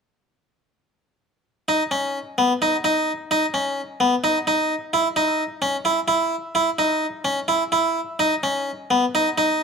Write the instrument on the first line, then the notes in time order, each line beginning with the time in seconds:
harpsichord
1.68 D#4
1.91 C#4
2.38 B3
2.62 D#4
2.84 D#4
3.31 D#4
3.54 C#4
4.00 B3
4.24 D#4
4.47 D#4
4.93 E4
5.16 D#4
5.62 C#4
5.85 E4
6.08 E4
6.55 E4
6.79 D#4
7.25 C#4
7.48 E4
7.72 E4
8.19 D#4
8.43 C#4
8.91 B3
9.15 D#4
9.38 D#4